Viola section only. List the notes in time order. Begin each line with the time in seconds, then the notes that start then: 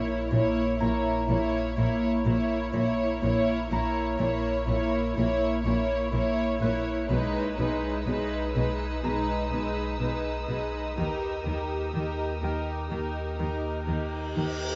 Already playing: A#3
0.33 A#3
0.81 A#3
1.30 A#3
1.78 A#3
2.26 A#3
2.75 A#3
3.24 A#3
3.72 A#3
4.21 A#3
4.69 A#3
5.18 A#3
5.66 A#3
6.14 A#3
6.62 A#3
7.11 G#3
7.60 G#3
8.08 G#3
8.56 G#3
9.05 G#3
9.52 G#3
10.01 G#3
10.49 G#3
10.97 G4
11.45 G4
11.94 G4
12.42 G4
12.90 G4
13.39 G4
13.88 G4
14.36 G4